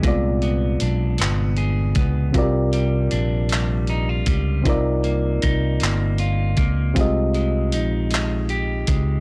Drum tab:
HH |xxxxxx|xxxxxx|xxxxxx|xxxxxx|
CP |---x--|---x--|---x--|---x--|
BD |o----o|o----o|o-o--o|o----o|